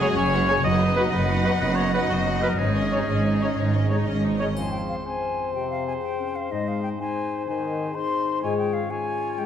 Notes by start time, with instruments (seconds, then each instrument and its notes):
Already playing: double bass section F#1, cello section F#2, harp F#2 F#4 G#4 C#5 F#5 G#5, clarinet C#4, oboe G#4, violin section D#5, flute G#5
0.01 viola section G#3 F#4, harp C#4, trumpet C#5, violin section F#5
0.10 harp C#3
0.15 double bass section F#1, cello section F#2, viola section C#4 G#4, harp C#4, oboe C#5, violin section C#5 G#5
0.25 harp C#3
0.34 viola section G#3 F#4, harp C#4, violin section F#5
0.42 harp C#3
0.47 french horn section F#3 G#4, harp C#4, viola section C#4 G#4, trumpet C#5, violin section G#5
0.59 cello section F#2, harp C#3, flute D#5
0.63 double bass section F#1, harp F#2, clarinet B3, viola section D#4 F#4, violin section B4 F#5, oboe D#5
0.74 harp F#3
0.79 harp B3, viola section B3 D#4, violin section D#5
0.89 harp F#4
0.96 french horn section F#3 F#4, viola section D#4 F#4, trumpet B4, violin section F#5
1.04 harp F#4
1.11 double bass section F#1, cello section F#2, viola section B3 D#4, oboe B4, violin section D#5 F#5, harp F#5
1.20 harp B5
1.28 viola section D#4 F#4, violin section F#5
1.36 harp B5
1.44 french horn section F#3 F#4, viola section B3 D#4, trumpet B4, violin section D#5, harp F#5
1.52 harp B5
1.60 double bass section F#1, cello section F#2, viola section D#4 F#4, oboe B4, harp F#5, violin section F#5
1.69 harp B4
1.76 viola section B3 D#4, harp F#4, oboe C#5
1.80 violin section D#5
1.85 harp B3
1.93 french horn section F#3 F#4, viola section D#4 F#4, trumpet B4, oboe B4, violin section F#5
2.09 double bass section F#1, cello section F#2, harp F#3, viola section B3 D#4, oboe F#4, violin section D#5
2.19 harp B3
2.27 harp F#3, viola section D#4 F#4, violin section F#5
2.35 harp B3
2.41 french horn section F#3 F#4, harp F#3, viola section B3 D#4, oboe A#4, trumpet B4, violin section D#5
2.51 harp B3
2.58 double bass section G#1, cello section G#2, harp G#2, clarinet C#4, viola section D#4, oboe G#4, violin section C#5
2.68 harp D#3
2.74 viola section C#4, harp C#4, violin section D#5
2.86 harp D#4
2.92 french horn section G#3 D#4, viola section D#4, harp G#4, trumpet C#5, violin section C#5
3.01 harp C#5
3.08 double bass section G#1, cello section G#2, viola section C#4, violin section D#5, harp D#5
3.24 viola section D#4, violin section C#5
3.41 french horn section G#3 D#4, viola section C#4, trumpet C#5, violin section D#5
3.56 double bass section G#1, cello section G#2, viola section D#4, violin section C#5
3.67 harp C#5
3.75 viola section C#4, harp G#4, violin section D#5
3.82 harp D#4
3.89 french horn section G#3 D#4, harp C#4, viola section D#4, trumpet C#5, violin section C#5
3.98 harp D#3
4.06 double bass section G#1, cello section G#2, harp C#4, viola section C#4, violin section D#5
4.16 harp D#3
4.24 harp C#4, viola section D#4, violin section C#5
4.32 harp D#3
4.39 french horn section G#3 D#4, harp C#4, viola section C#4, trumpet C#5, violin section D#5
4.48 harp D#3
4.56 harp F2, french horn section F3, clarinet C4, oboe C5, flute G#5, triangle
4.72 harp G#3, flute G5
4.89 harp G#4, flute F5
5.05 clarinet C4, harp C5, oboe C5, flute G#5
5.22 harp F5
5.38 harp C5
5.53 french horn section C3, flute G5
5.70 flute F5
5.87 harp G#4, flute G#5
6.01 harp C5, flute G5
6.18 clarinet C#4, harp F5
6.35 harp C5, flute F5
6.50 harp G#2, french horn section G#3, clarinet D#4, oboe C5, flute D#5
6.68 harp C4, flute F5
6.83 flute G5
6.99 clarinet D#4, harp C5, oboe C5, flute G#5
7.16 harp D#5
7.32 harp C5
7.47 french horn section D#3, harp D#3, clarinet D#4, oboe C5, flute G#5
7.63 harp C4
7.81 harp G#4
7.95 clarinet D#4, oboe C5, harp C5, flute C6
8.12 harp D#5
8.42 harp G#2, french horn section G#3, clarinet F4, oboe C#5, flute G#5
8.58 harp C#4, flute G5
8.73 harp G#4, flute F5
8.90 clarinet F4, oboe C#5, harp C#5, flute G#5
9.07 harp F5
9.24 harp C#5
9.37 french horn section G#3, harp G#3, flute G5